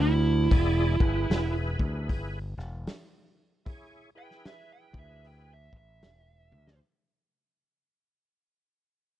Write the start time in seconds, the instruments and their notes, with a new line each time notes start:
Already playing: fingered electric bass D2
0.01 lead electric guitar E4
0.51 fingered electric bass E1, tonewheel organ E4 G#4 D5, kick, open hi-hat
1.00 fingered electric bass G1, tonewheel organ E4 G#4 B4, kick
1.30 fingered electric bass E1, snare, open hi-hat
1.79 fingered electric bass D2, kick
2.09 fingered electric bass G1, kick, open hi-hat
2.58 fingered electric bass E1, snare
2.87 snare, open hi-hat
3.65 tonewheel organ E4 G#4 C#5, kick, open hi-hat
4.15 tonewheel organ E4 G#4 B4, lead electric guitar G5
4.31 snare
4.45 lead electric guitar E5, snare, open hi-hat
4.72 lead electric guitar G5
4.93 fingered electric bass D2, kick
4.99 lead electric guitar E5
5.24 lead electric guitar G5, open hi-hat
5.53 lead electric guitar E5
5.73 fingered electric bass A1, kick
5.77 lead electric guitar E5
6.02 fingered electric bass E1, snare, open hi-hat
6.52 fingered electric bass D2, high tom
6.67 snare